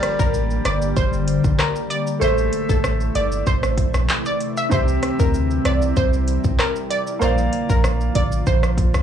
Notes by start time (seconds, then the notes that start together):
Already playing: D3 G3 A#3 G4 A#4 D5
0.03 cross-stick, closed hi-hat, shaker
0.19 A1 A#4, kick, shaker
0.34 shaker
0.51 shaker
0.65 G1 D5, cross-stick, closed hi-hat, shaker
0.82 shaker
0.96 G1 C5, kick, shaker
1.13 shaker
1.28 closed hi-hat, shaker
1.44 G1, kick, shaker
1.59 A#4, cross-stick, clap, shaker
1.76 shaker
1.90 D5, closed hi-hat, shaker
2.07 shaker
2.19 A1 C3 E3 A3 E4 A4 C5, shaker
2.24 E5
2.38 shaker
2.53 closed hi-hat, shaker
2.69 A1 A4, kick, shaker
2.84 cross-stick, shaker
3.00 shaker
3.15 G1 D5, closed hi-hat, shaker
3.32 shaker
3.47 A1 C5, kick, shaker
3.63 cross-stick, shaker
3.78 kick, closed hi-hat, shaker
3.94 A#1, cross-stick, shaker
4.09 clap, shaker
4.26 D5, shaker
4.41 closed hi-hat, shaker
4.57 E5, shaker
4.69 C2 C3 G3 C4 E4 G4 C5, kick, shaker
4.74 E5
4.88 shaker
5.03 cross-stick, closed hi-hat, shaker
5.19 D2 A#4, kick, shaker
5.34 shaker
5.51 shaker
5.65 C2 D5, cross-stick, closed hi-hat, shaker
5.82 shaker
5.96 C2 C5, kick, shaker
6.13 shaker
6.28 closed hi-hat, shaker
6.44 C2, kick, shaker
6.59 A#4, cross-stick, clap, shaker
6.76 shaker
6.90 D5, closed hi-hat, shaker
7.07 shaker
7.19 A#1 D3 F3 A#3 F4 A#4 C5 D5, shaker
7.23 F5
7.38 shaker
7.53 closed hi-hat, shaker
7.70 A#1 A#4, kick, shaker
7.84 cross-stick, shaker
8.01 shaker
8.15 A1 D5, kick, closed hi-hat, shaker
8.32 shaker
8.47 A#1 C5, kick, shaker
8.63 cross-stick, shaker
8.78 kick, closed hi-hat, shaker
8.94 C2, cross-stick, shaker